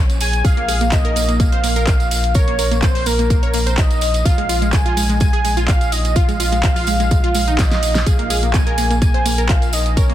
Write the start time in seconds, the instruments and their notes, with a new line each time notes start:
Already playing: sub bass A#1, synth pluck C#5
0.10 closed hi-hat, tambourine
0.20 soft synth lead G#5, open hi-hat, tambourine
0.33 closed hi-hat, tambourine
0.45 sub bass A#1, synth pluck G#4, soft synth lead F5, kick, closed hi-hat, tambourine
0.57 synth pluck A#3, closed hi-hat
0.68 synth pluck G#4, open hi-hat, tambourine
0.81 synth pluck A#3, closed hi-hat, tambourine
0.92 synth pluck A#3, soft synth lead D#5, kick, clap, closed hi-hat, tambourine
1.05 synth pluck A#4, closed hi-hat
1.16 synth pluck A#3, open hi-hat, tambourine
1.28 synth pluck A#3, closed hi-hat, tambourine
1.40 synth pluck A#3, soft synth lead F5, kick, closed hi-hat, tambourine
1.52 synth pluck C5, closed hi-hat
1.64 synth pluck A#3, open hi-hat, tambourine
1.76 synth pluck A#4, closed hi-hat, tambourine
1.87 kick, clap, closed hi-hat, tambourine
2.00 closed hi-hat, tambourine
2.11 open hi-hat, tambourine
2.23 closed hi-hat, tambourine
2.34 synth pluck A#4, soft synth lead C#5, kick, closed hi-hat, tambourine
2.48 synth pluck A#3, closed hi-hat
2.59 synth pluck A#4, open hi-hat, tambourine
2.71 synth pluck A#3, closed hi-hat, tambourine
2.82 synth pluck A#3, soft synth lead C5, kick, clap, closed hi-hat, tambourine
2.95 synth pluck C5, open hi-hat
3.06 synth pluck A#3, soft synth lead A#4, open hi-hat, tambourine
3.19 synth pluck A#3, closed hi-hat, tambourine
3.30 synth pluck A#3, kick, closed hi-hat, tambourine
3.43 synth pluck C#5, closed hi-hat
3.54 synth pluck A#3, open hi-hat, tambourine
3.66 synth pluck C5, closed hi-hat, tambourine
3.78 soft synth lead D#5, kick, clap, closed hi-hat, tambourine
3.91 closed hi-hat, tambourine
4.01 open hi-hat, tambourine
4.14 closed hi-hat, tambourine
4.25 sub bass A#1, synth pluck F4, soft synth lead F5, kick, closed hi-hat, tambourine
4.38 synth pluck G#3, closed hi-hat
4.49 synth pluck F4, open hi-hat, tambourine
4.62 synth pluck G#3, closed hi-hat, tambourine
4.73 synth pluck G#3, soft synth lead G#5, kick, clap, closed hi-hat, tambourine
4.86 synth pluck F4, closed hi-hat
4.97 synth pluck G#3, open hi-hat, tambourine
5.09 synth pluck G#3, closed hi-hat, tambourine
5.20 synth pluck G#3, soft synth lead G#5, kick, closed hi-hat, tambourine
5.33 synth pluck G#4, closed hi-hat
5.44 synth pluck G#3, open hi-hat, tambourine
5.57 synth pluck F4, closed hi-hat, tambourine
5.68 soft synth lead F5, kick, clap, closed hi-hat, tambourine
5.81 closed hi-hat, tambourine
5.92 soft synth lead D#5, open hi-hat, tambourine
6.05 closed hi-hat, tambourine
6.16 synth pluck F4, soft synth lead F5, kick, closed hi-hat, tambourine
6.28 synth pluck G#3, closed hi-hat, tambourine
6.40 synth pluck F4, open hi-hat, tambourine
6.52 synth pluck G#3, closed hi-hat, tambourine
6.63 synth pluck G#3, kick, clap, closed hi-hat, tambourine
6.76 synth pluck F4, open hi-hat, tambourine
6.87 synth pluck G#3, open hi-hat, tambourine
7.00 synth pluck G#3, closed hi-hat, tambourine
7.11 synth pluck G#3, kick, closed hi-hat, tambourine
7.24 synth pluck F4, closed hi-hat
7.34 synth pluck G#3, open hi-hat, tambourine
7.48 synth pluck D#4, closed hi-hat, tambourine
7.58 soft synth lead D#5, kick, snare, clap, closed hi-hat, tambourine
7.71 snare, closed hi-hat, tambourine
7.83 open hi-hat, tambourine
7.95 snare, closed hi-hat, tambourine
8.06 sub bass A#1, synth pluck G#4, soft synth lead F5, kick, closed hi-hat, tambourine
8.19 synth pluck A#3, closed hi-hat
8.30 synth pluck G#4, open hi-hat, tambourine
8.43 synth pluck A#3, closed hi-hat, tambourine
8.54 synth pluck A#3, soft synth lead G#5, kick, clap, closed hi-hat, tambourine
8.67 synth pluck A#4, closed hi-hat
8.78 synth pluck A#3, open hi-hat, tambourine
8.90 synth pluck A#3, closed hi-hat, tambourine
9.02 synth pluck A#3, soft synth lead G#5, kick, closed hi-hat, tambourine
9.14 synth pluck C5, closed hi-hat
9.26 synth pluck A#3, open hi-hat, tambourine
9.38 synth pluck A#4, closed hi-hat, tambourine
9.49 soft synth lead F5, kick, clap, closed hi-hat, tambourine
9.62 closed hi-hat, tambourine
9.73 soft synth lead D#5, open hi-hat, tambourine
9.86 closed hi-hat, tambourine
9.97 synth pluck A#4, soft synth lead C#5, kick, closed hi-hat, tambourine
10.09 synth pluck A#3, closed hi-hat